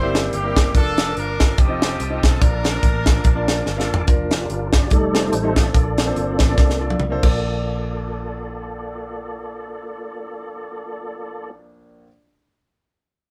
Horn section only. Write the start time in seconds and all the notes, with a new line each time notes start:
Already playing: E4 G4 C5
0.33 A#3 E4 G4
0.76 D4 F4 A4
1.17 D4 F4 A#4
1.59 C4 D#4 G4
2.25 A4
2.41 D4 F4 A#4